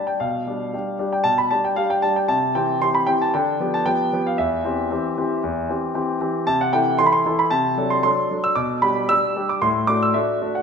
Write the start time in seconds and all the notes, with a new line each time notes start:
Already playing: G3 D4 G4
0.07 G5
0.20 B2 F5
0.47 G3 D4 G4
0.74 G3 D4 G4
0.99 G3 D4 G4
1.13 G5
1.24 B2 A5
1.38 B5
1.51 G3 D4 G4 A5
1.65 G5
1.76 G3 D4 G4 F5
1.90 G5
2.02 G3 D4 G4 A5
2.16 G5
2.28 C3 A5
2.55 E3 C4 G4 G5
2.82 E3 C4 G4 C6
2.95 B5
3.07 E3 C4 G4 G5
3.22 A5
3.34 D3 G5
3.60 F3 B3 G4
3.74 A5
3.86 F3 B3 G4 G5
4.13 F3 B3 G4
4.27 F5
4.38 E2 E5
4.64 E3 C4 G4
4.91 E3 C4 G4
5.18 E3 C4 G4
5.44 E2
5.69 E3 C4 G4
5.94 E3 C4 G4
6.21 E3 C4 G4
6.47 C3 A5
6.61 F#5
6.73 E3 E4 A4 G5
6.98 E3 E4 A4 C6
7.06 B5
7.12 C6
7.25 E3 E4 A4
7.39 B5
7.50 C3 A5
7.77 F#3 D4 A4
7.90 C6
8.03 F#3 D4 A4 C6
8.30 F#3 D4 A4
8.44 E6
8.55 B2 D6
8.82 G3 D4 G4 B5
9.09 G3 D4 G4 E6
9.36 G3 D4 G4
9.49 D6
9.62 A2 C6
9.87 A3 D4 F#4 D6
10.03 E6
10.14 A3 D4 F#4 E5
10.42 A3 D4 F#4
10.55 F#5